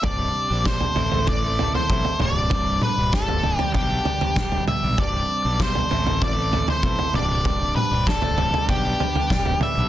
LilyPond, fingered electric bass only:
\new Staff \with { instrumentName = "Fingered electric bass" } { \clef bass \time 4/4 \key c \major \tempo 4 = 97 c,,8 r16 bes,,8. a,,4. b,,16 r16 c,,8~ | c,,8. c,,4~ c,,16 b,,8 r8 d,,8 r16 b,,16 | r8. b,,8. a,,4. b,,16 r16 c,,8~ | c,,8. c,,4~ c,,16 b,,8 r8 d,,8 r16 b,,16 | }